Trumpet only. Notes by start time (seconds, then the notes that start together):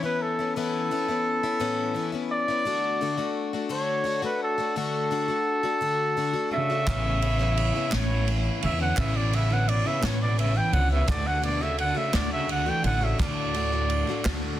0.04 B4
0.22 A4
0.56 A4
2.31 D5
3.72 C#5
4.25 B4
4.43 A4
4.77 A4
6.53 E5
7.93 C#5
8.64 E5
8.81 F#5
8.99 E5
9.17 D5
9.35 E5
9.53 F#5
9.69 D5
9.87 E5
10.05 C#5
10.22 D5
10.39 E5
10.57 G5
10.74 F#5
10.91 E5
11.10 D5
11.27 F#5
11.44 D5
11.62 E5
11.80 F#5
11.97 E5
12.15 D5
12.33 E5
12.51 F#5
12.69 G5
12.86 F#5
13.04 E5
13.21 D5